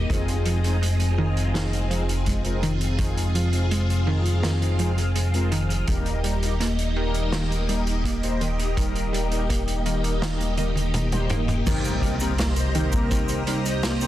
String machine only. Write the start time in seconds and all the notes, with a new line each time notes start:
Already playing: D#5
0.10 C4 F4 G#4
2.99 F5
5.88 A#3 D#4 G4 D#5
11.66 G4 C5 D#5 A#5